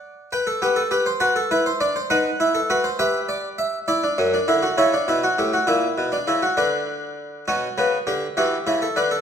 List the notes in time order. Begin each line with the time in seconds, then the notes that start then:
Already playing: D5 F#5
0.32 B4 G5
0.47 A4
0.62 B3 G4
0.76 A4
0.91 G4 B4
1.06 C5
1.20 F#4 B4 A5
1.36 A4
1.51 E4 B4
1.66 C5
1.81 D4 D5
1.96 C5
2.10 D#4 B4 F#5
2.40 E4
2.55 A4
2.70 F#4 B4
2.84 C5
2.99 G4 B4 E5
3.29 D5
3.58 E5
3.88 E4 D5
4.04 D4
4.18 F#2 C#4
4.34 D4
4.48 D3 E4
4.63 F#4
4.78 C#3 E4 C#5
4.93 D4
5.08 B2 E4
5.23 F#4
5.38 A2 G4
5.53 F#4
5.67 A#2 E4
5.98 B2
6.12 D4
6.27 C#3 E4
6.42 F#4
6.57 D3 D4 B4
7.48 B2 C#4 F#4
7.78 C#3 B3
8.07 D3 G4
8.37 E3 F#4 G4
8.67 C#3 E4
8.82 A4
8.96 D3 D4 B4
9.11 A4